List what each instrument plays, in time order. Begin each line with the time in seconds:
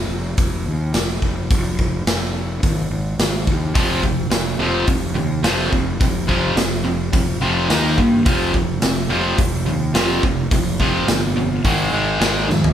0.09 fingered electric bass F1
0.37 fingered electric bass F1, kick, open hi-hat
0.66 fingered electric bass D#2
0.94 fingered electric bass F1, snare, open hi-hat
1.22 fingered electric bass F1, kick
1.51 fingered electric bass F1, kick, open hi-hat
1.79 kick
2.06 fingered electric bass F1, snare, open hi-hat
2.63 fingered electric bass G#1, kick, open hi-hat
2.91 fingered electric bass G#1
3.19 fingered electric bass G#1, snare, open hi-hat
3.47 fingered electric bass D#2, kick
3.74 fingered electric bass F1, distorted electric guitar F2 C3 F3, kick, open hi-hat
4.02 distorted electric guitar F2 C3, kick
4.30 fingered electric bass F1, distorted electric guitar F2 C3, snare, open hi-hat
4.59 fingered electric bass F1, distorted electric guitar F2 C3 F3
4.87 fingered electric bass F1, distorted electric guitar F2 C3, kick, open hi-hat
5.15 fingered electric bass D#2, distorted electric guitar F2 C3
5.43 fingered electric bass F1, distorted electric guitar F2 C3 F3, snare, open hi-hat
5.71 fingered electric bass F1, distorted electric guitar F2 C3, kick
6.00 fingered electric bass F1, distorted electric guitar F2 C3, kick, open hi-hat
6.27 distorted electric guitar F2 C3 F3, kick
6.56 fingered electric bass F1, distorted electric guitar F2 C3, snare, open hi-hat
6.84 distorted electric guitar F2 C3
7.13 fingered electric bass F1, distorted electric guitar F2 C3, kick, open hi-hat
7.41 fingered electric bass F1, distorted electric guitar F2 C3 F3
7.69 fingered electric bass D#2, distorted electric guitar D#3 A#3 D#4, snare, open hi-hat
7.98 fingered electric bass G2, distorted electric guitar D#3 A#3, kick
8.25 fingered electric bass F1, distorted electric guitar F2 C3 F3, kick, open hi-hat
8.54 distorted electric guitar F2 C3, kick
8.82 fingered electric bass F1, distorted electric guitar F2 C3, snare, open hi-hat
9.09 fingered electric bass F1, distorted electric guitar F2 C3 F3
9.38 fingered electric bass F1, distorted electric guitar F2 C3, kick, open hi-hat
9.66 fingered electric bass D#2, distorted electric guitar F2 C3
9.94 fingered electric bass F1, distorted electric guitar F2 C3 F3, snare, open hi-hat
10.23 fingered electric bass F1, distorted electric guitar F2 C3, kick
10.51 fingered electric bass F1, distorted electric guitar F2 C3, kick, open hi-hat
10.80 distorted electric guitar F2 C3 F3, kick
11.08 fingered electric bass G1, distorted electric guitar F2 C3, snare, open hi-hat
11.37 distorted electric guitar F2 C3
11.64 fingered electric bass G#1, distorted electric guitar G#2 D#3 G#3, kick, open hi-hat
11.92 fingered electric bass G#1, distorted electric guitar G#2 D#3 G#3
12.20 fingered electric bass G#1, distorted electric guitar G#2 D#3 G#3, snare, open hi-hat
12.48 fingered electric bass F2, distorted electric guitar G#2 D#3, snare
12.64 floor tom